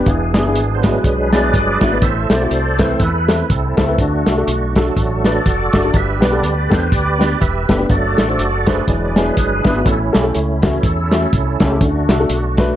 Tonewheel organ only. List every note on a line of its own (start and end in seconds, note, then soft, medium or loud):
0.07 1.01 B3 medium
0.07 0.83 D4 medium
0.07 0.78 G#4 medium
0.75 0.83 C5 medium
0.82 1.98 F#3 soft
0.82 1.98 G#3 soft
0.82 1.99 D4 medium
0.82 1.32 G#4 medium
0.82 1.31 B4 medium
1.32 1.99 G#4 medium
1.32 1.99 B4 medium
1.32 2.05 D5 loud
2.02 2.31 A4 medium
2.02 2.79 C5 medium
2.02 2.29 E5 medium
2.32 3.25 A4 medium
2.32 2.82 D5 medium
2.80 3.10 E3 soft
2.80 3.10 A3 soft
2.80 3.11 C4 soft
2.80 3.02 C5 medium
3.02 3.50 E4 medium
3.02 3.52 B4 medium
3.51 3.96 C4 medium
3.51 3.96 E4 medium
3.51 4.01 A4 medium
4.00 4.75 A3 medium
4.00 4.76 D4 medium
4.00 4.76 F#4 medium
4.76 5.42 F#3 soft
4.76 5.42 A3 soft
4.76 5.43 D4 medium
4.76 5.25 F#4 medium
4.76 5.25 A4 medium
5.26 5.91 F#4 medium
5.26 5.91 A4 medium
5.26 5.97 D5 medium
5.96 6.24 G4 medium
5.96 6.24 B4 medium
5.96 6.22 E5 medium
6.24 6.54 G3 soft
6.24 6.54 B3 soft
6.24 6.54 D4 medium
6.24 6.91 G4 medium
6.24 6.91 B4 medium
6.24 6.74 D5 loud
6.72 6.93 C5 medium
6.92 7.39 G4 medium
6.92 7.40 B4 medium
6.92 7.42 D5 medium
7.40 7.86 G4 medium
7.40 7.86 B4 medium
7.40 7.86 E5 medium
7.90 8.24 F#3 medium
7.90 8.25 A3 soft
7.90 8.25 D4 medium
7.90 8.84 F#4 medium
7.90 8.84 A4 medium
7.90 8.67 D5 medium
8.68 9.15 G#4 medium
8.68 9.15 B4 medium
8.68 9.18 D5 medium
8.88 9.61 F#3 medium
8.88 9.61 G#3 soft
8.88 9.15 D4 medium
9.16 9.82 D4 medium
9.16 9.82 G#4 medium
9.16 9.88 B4 loud
9.86 10.33 C#4 medium
9.86 10.34 E4 medium
9.86 9.99 A4 medium
10.15 10.35 G4 medium
10.34 10.61 A3 medium
10.34 10.61 C#4 medium
10.34 10.83 E4 medium
10.61 10.92 E3 soft
10.61 10.93 A3 soft
10.61 10.82 C#4 medium
10.84 11.77 C#4 medium
10.84 11.78 E4 medium
10.84 11.63 A4 medium
11.62 11.82 G4 medium
11.82 12.59 A3 medium
11.82 12.59 D4 soft
11.82 12.76 F#4 medium
12.59 12.76 F#3 soft
12.59 12.76 A3 soft
12.59 12.76 D4 medium